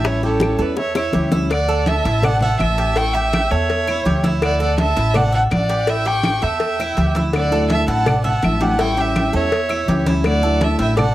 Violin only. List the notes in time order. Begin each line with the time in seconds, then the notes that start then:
0.07 C#5
0.25 A4
0.62 B4
0.79 C#5
0.97 C#5
1.51 D5
1.88 E5
2.24 F#5
2.42 F#5
2.62 E5
2.97 G5
3.14 E5
3.51 C#5
4.45 D5
4.63 D5
4.81 E5
5.17 F#5
5.35 F#5
5.52 D5
5.90 E5
6.06 G5
6.43 E5
7.36 D5
7.72 E5
7.90 F#5
8.26 F#5
8.44 E5
8.62 F#5
8.81 G5
9.01 E5
9.36 C#5
10.27 D5
10.64 E5
10.82 E5
11.00 F#5